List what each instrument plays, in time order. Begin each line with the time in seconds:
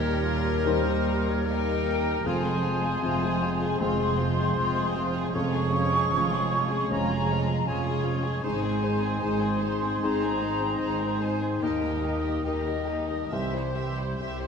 Already playing: felt piano D#2 A#2, cello section D#2, double bass section D#2, viola section G3, french horn section G3 A#3, violin section G4 A#4, clarinet G4, oboe A#4, flute section C#5
0.25 violin section F4
0.64 viola section G3, felt piano G3 D#4 A#4, violin section D#4, flute section C5
1.27 flute section C#5
1.45 viola section A#3, violin section D#4 A#4, clarinet G4, oboe A#4
1.49 flute section G5
2.24 double bass section F1, felt piano F2, cello section F2, viola section F3, french horn section G#3 C4, violin section C4 F4, clarinet G#4, oboe C5, flute section G#5
2.44 viola section G#3, violin section F4 G#4
2.64 viola section F3, violin section C4 F4
2.83 viola section G#3, violin section F4 G#4
3.02 double bass section F1, cello section F2, felt piano C3, viola section F3, violin section C4 F4
3.22 viola section G#3, violin section F4 G#4
3.41 viola section F3, violin section C4 F4
3.61 viola section G#3, violin section F4 G#4
3.80 double bass section F1, cello section F2, viola section F3, felt piano G#3 C4 G#4, violin section C4 F4, clarinet G#4, oboe C5, flute section C6
3.99 viola section G#3, violin section F4 G#4
4.18 viola section F3, violin section C4 F4
4.36 viola section G#3, violin section F4 G#4
4.55 double bass section F1, cello section F2, viola section F3, violin section C4 F4
4.75 viola section G#3, violin section F4 G#4
4.94 viola section F3, violin section C4 F4
5.13 viola section G#3, violin section F4 G#4
5.31 double bass section F1, cello section F2, viola section F3, violin section C#4 F4, french horn section C#4, oboe C#5, flute section C#6
5.35 felt piano F2, clarinet G#4
5.51 viola section G#3, violin section F4 G#4
5.71 viola section F3, violin section C#4 F4
5.90 viola section G#3, violin section F4 G#4
6.11 double bass section F1, cello section F2, felt piano F3, viola section F3, violin section C#4 F4
6.29 viola section G#3, violin section F4 G#4
6.49 viola section F3, violin section C#4 F4
6.70 viola section G#3, violin section F4 G#4
6.90 double bass section F1, cello section F2, viola section F3, felt piano G#3 C#4 G#4, violin section C#4 F4, flute section A#5
7.09 viola section G#3, violin section F4 G#4
7.29 viola section F3, violin section C#4 F4
7.47 viola section G#3, violin section F4 G#4
7.67 double bass section F1, cello section F2, viola section F3, violin section C#4 F4, clarinet G#4, oboe C#5, flute section G#5
7.85 viola section G#3, violin section F4 G#4
8.04 viola section F3, violin section C#4 F4
8.24 viola section G#3, violin section F4 G#4
8.43 double bass section G#1, felt piano G#2, cello section G#2, viola section G#3, french horn section C4 D#4, violin section D#4 C5, clarinet G#4, oboe C5, flute section G#5
8.63 violin section C4 G#4, viola section C4
8.83 viola section G#3, violin section D#4 C5
9.03 violin section C4 G#4, viola section C4
9.22 double bass section G#1, cello section G#2, felt piano D#3, viola section G#3, violin section D#4 C5
9.40 violin section C4 G#4, viola section C4
9.60 viola section G#3, violin section D#4 C5, flute section C6
9.81 violin section C4 G#4, viola section C4
10.02 double bass section G#1, cello section G#2, viola section G#3, felt piano C4 D#4 G#4, violin section D#4 C5, flute section A#5
10.22 violin section C4 G#4, viola section C4
10.40 viola section G#3, violin section D#4 C5
10.59 violin section C4, viola section C4
10.64 violin section G#4
10.79 double bass section G#1, cello section G#2, viola section G#3, violin section D#4 C5
10.99 violin section C4 G#4, viola section C4
11.19 viola section G#3, violin section D#4 C5, flute section G#5
11.40 violin section C4 G#4, viola section C4
11.60 double bass section D#2, cello section D#2, felt piano D#2, viola section A#3, violin section D#4 G4, clarinet A#4, oboe D#5, flute section G5
11.65 french horn section A#3
11.80 viola section G3, violin section G4
11.85 violin section A#4
12.02 viola section A#3, violin section D#4 G4
12.22 viola section G3, violin section G4 A#4
12.45 double bass section D#2, cello section D#2, viola section A#3, violin section D#4 G4, felt piano G4 A#4, clarinet A#4, oboe D#5, flute section D#5
12.66 viola section G3, violin section G4 A#4
12.87 viola section A#3, violin section D#4 G4
13.09 viola section G3, violin section G4 A#4
13.31 cello section C2, felt piano C2, double bass section C2, viola section E3, french horn section G3 C4, violin section G4 E5, clarinet G4, oboe C5, flute section E5
13.54 viola section G3, violin section E4 C5
13.74 viola section E3, violin section G4 E5
13.97 viola section G3, violin section E4 C5
14.19 cello section C2, double bass section C2, viola section G3, violin section G4 E5, felt piano G4 C5
14.40 violin section E4 C5